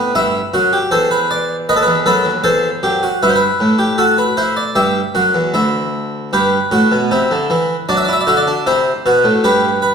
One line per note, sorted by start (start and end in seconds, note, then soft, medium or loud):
0.00 0.12 A2 loud
0.00 0.14 B3 medium
0.00 0.12 B4 medium
0.15 0.39 G2 medium
0.15 0.39 E4 loud
0.15 0.89 E5 medium
0.54 0.77 F#2 medium
0.54 0.72 F#4 medium
0.73 0.91 G4 loud
0.91 1.66 E2 medium
0.91 1.10 A4 medium
0.91 1.66 C5 medium
1.11 1.29 B4 medium
1.31 1.54 D5 loud
1.69 1.87 D#2 medium
1.69 1.73 B4 medium
1.69 1.93 D#5 loud
1.76 1.83 A4 medium
1.82 1.97 B4 medium
1.87 2.06 E2 medium
2.06 2.25 F#2 medium
2.06 2.30 A4 medium
2.06 2.30 B4 medium
2.25 2.44 D#2 medium
2.44 2.68 E2 medium
2.44 2.68 A4 loud
2.44 3.19 C5 medium
2.83 3.07 F#2 medium
2.83 3.02 G4 loud
3.03 3.22 F#4 medium
3.23 3.46 G2 medium
3.23 3.78 E4 medium
3.23 3.29 B4 medium
3.29 3.36 C5 medium
3.35 3.97 B4 medium
3.60 4.73 A2 medium
3.78 3.98 G4 medium
3.98 4.22 F#4 medium
3.98 4.17 A4 medium
4.18 4.37 B4 medium
4.37 4.61 E4 medium
4.37 4.56 C5 medium
4.57 4.75 D5 medium
4.75 5.00 G2 medium
4.75 5.00 G4 medium
4.75 6.29 E5 medium
5.15 5.34 F#2 medium
5.15 5.39 F#4 medium
5.34 5.54 E2 medium
5.54 6.30 D2 medium
5.54 6.30 E4 medium
6.33 6.57 G2 medium
6.33 6.57 G4 medium
6.33 7.85 B4 medium
6.71 6.91 A2 medium
6.71 6.96 F#4 medium
6.92 7.11 B2 medium
7.11 7.30 C3 medium
7.11 7.87 E4 medium
7.31 7.50 D3 medium
7.50 7.74 E3 loud
7.89 8.13 F#3 loud
7.89 8.08 D4 medium
7.89 7.97 D5 medium
7.97 8.05 E5 medium
8.05 8.27 E4 medium
8.05 8.13 D5 medium
8.13 8.21 E5 medium
8.21 8.29 D5 medium
8.27 8.51 D3 medium
8.27 8.46 F#4 medium
8.27 8.37 E5 medium
8.37 8.65 D5 medium
8.47 8.66 D4 medium
8.67 8.90 C3 loud
8.67 8.91 E4 medium
8.67 9.42 C5 medium
9.06 9.24 B2 medium
9.06 9.30 F#4 medium
9.24 9.43 A2 medium
9.44 9.95 G2 medium
9.44 9.68 G4 medium
9.44 9.81 B4 medium
9.82 9.95 B4 medium